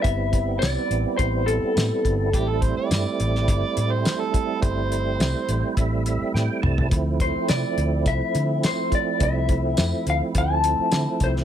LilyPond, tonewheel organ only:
<<
  \new Staff \with { instrumentName = "Tonewheel organ" } { \time 4/4 \key a \minor \tempo 4 = 105 r1 | r1 | r4. c''8 e''8 e''8 g''8 a''8 | r1 |
r1 | }
  \new Staff \with { instrumentName = "Tonewheel organ" } { \time 4/4 \key a \minor <g b c' e'>1 | <g a c' e'>1~ | <g a c' e'>1 | <f a c' e'>1~ |
<f a c' e'>1 | }
>>